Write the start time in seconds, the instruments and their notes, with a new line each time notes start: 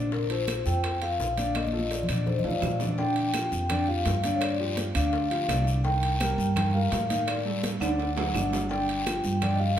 Already playing: upright bass A#1
0.12 grand piano D3 D4 D5, vibraphone A#4, high bongo, high conga, long guiro
0.30 grand piano F3 F4 A4, vibraphone C5, high conga, high timbale
0.47 high bongo, high conga, high timbale, short guiro, claves
0.65 upright bass F2, grand piano F3 F4 A4, vibraphone G5, high conga, short guiro
0.83 high bongo, high conga, high timbale, long guiro, claves
1.01 grand piano F3 F4 A4, vibraphone F5, high conga, high timbale
1.19 upright bass A#1, high bongo, low bongo, high conga, short guiro
1.37 grand piano D3 D4 D5, high conga, high timbale, short guiro
1.55 vibraphone D#5, high bongo, high conga, high timbale, long guiro, claves
1.67 high conga
1.73 grand piano F3 F4 A4, high bongo
1.79 high conga
1.90 vibraphone D5, high bongo, high timbale, short guiro
2.03 low conga
2.09 upright bass A#2, grand piano D3 D4 D5, high timbale, short guiro, claves
2.15 low conga
2.26 vibraphone C5, high bongo, low conga, long guiro
2.38 vibraphone D#5, low conga
2.44 upright bass A2, grand piano F3 F4 A4, vibraphone D5 F5, high timbale
2.51 low conga
2.62 upright bass A#2, low bongo, low conga, low timbale, short guiro, claves
2.80 grand piano D3 D4 D5, low bongo, low timbale, short guiro
2.87 low conga
2.98 grand piano D3 D4 D5, vibraphone G5, high bongo, high conga, long guiro
3.16 high conga, high timbale
3.34 grand piano F3 F4 G4, high bongo, high conga, high timbale, low timbale, short guiro, claves
3.52 upright bass F2, high conga, short guiro
3.69 grand piano D3 D4 D5, vibraphone G5, high bongo, high conga, low conga, high timbale, long guiro, claves
3.88 grand piano F3 F4 G4, vibraphone F5, high conga
4.06 upright bass G2, high bongo, low bongo, high conga, high timbale, low timbale, short guiro
4.23 grand piano D3 D4 D5, vibraphone F5, high conga, high timbale, short guiro
4.35 vibraphone C#5
4.41 vibraphone D5, high bongo, high conga, high timbale, long guiro, claves
4.59 grand piano F3 F4 G4, high bongo, high conga
4.77 high bongo, high conga, high timbale, low timbale, short guiro
4.95 upright bass D2, grand piano D3 D4 D5, vibraphone F5, high conga, high timbale, short guiro, claves
5.13 high bongo, high conga, long guiro
5.30 grand piano F3 F4 G4, vibraphone F5, high bongo, high conga, high timbale
5.48 upright bass C2, grand piano D3 D4 D5, high bongo, low bongo, high conga, high timbale, low timbale, short guiro, claves
5.67 high bongo, high conga, short guiro
5.84 grand piano D#3 D#4 D#5, vibraphone G5, high bongo, high conga, long guiro
6.03 high conga, high timbale
6.20 grand piano G3 G4 A#4, high bongo, high conga, high timbale, low timbale, short guiro, claves
6.38 upright bass G2, high conga, short guiro
6.56 grand piano D#3 D#4 D#5, vibraphone G5, high bongo, high conga, low conga, high timbale, long guiro, claves
6.73 grand piano G3 G4 A#4, vibraphone F5, high conga
6.92 upright bass A2, high bongo, low bongo, high conga, high timbale, low timbale, short guiro
7.09 grand piano D#3 D#4 D#5, vibraphone F5, high conga, high timbale, short guiro
7.27 vibraphone D5, high bongo, high timbale, long guiro, claves
7.45 grand piano G3 G4 A4, high bongo, high conga
7.63 high bongo, high conga, high timbale, low timbale, short guiro
7.80 upright bass D2, grand piano D3 D4 D5, vibraphone F#5, high conga, high timbale, short guiro, claves
7.99 high bongo, high conga, high timbale, long guiro
8.16 grand piano F#3 F#4 A4, vibraphone F#5, high bongo, high conga, low timbale
8.34 upright bass G1, grand piano D3 D4 D5, low bongo, high conga, low timbale, short guiro, claves
8.53 low bongo, high conga, low timbale, short guiro
8.70 grand piano D3 D4 D5, vibraphone G5, high bongo, high conga, long guiro
8.89 high conga, high timbale
9.06 grand piano F3 F4 G4, high bongo, high conga, high timbale, low timbale, short guiro, claves
9.24 upright bass G2, high conga, short guiro
9.41 grand piano D3 D4 D5, vibraphone G5, high bongo, high conga, low conga, high timbale, long guiro, claves
9.54 vibraphone D#5
9.59 grand piano F3 F4 G4, vibraphone F5, high conga